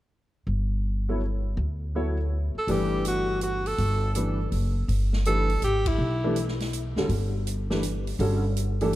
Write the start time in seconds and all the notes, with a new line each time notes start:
0.47 G1
1.09 F#3 B3 E4 A4 C#5
1.57 D2
1.95 F#3 B3 E4 A4 C#5
2.55 A4, muted upright bass stroke
2.67 G1 E3 G3 A3 D4 G4 B4, open hi-hat
3.05 F#4, closed hi-hat
3.41 F#4, closed hi-hat
3.66 A4, open hi-hat
3.78 G1, open hi-hat
4.15 E3 A3 D4 G4 B4, closed hi-hat
4.52 F#1, open hi-hat
4.88 G1, open hi-hat
5.13 snare
5.25 E3 A3 D4 G4 A4 B4, closed hi-hat
5.50 open hi-hat
5.62 G#1 G4, closed hi-hat
5.86 E4, kick, ride
5.98 B1
6.24 E3 A3 D4 G4 B4
6.36 closed hi-hat
6.48 snare
6.60 snare, open hi-hat
6.73 closed hi-hat
6.96 F#1 D3 G3 C#4 F#4 A4, snare
7.09 G1, open hi-hat
7.47 closed hi-hat
7.70 E3 A3 D4 G4 B4, snare
7.83 closed hi-hat
8.07 open hi-hat
8.19 G1 D3 G3 C#4 F#4 A4, open hi-hat
8.56 closed hi-hat
8.81 E3 A3 D4 G4 A4, open hi-hat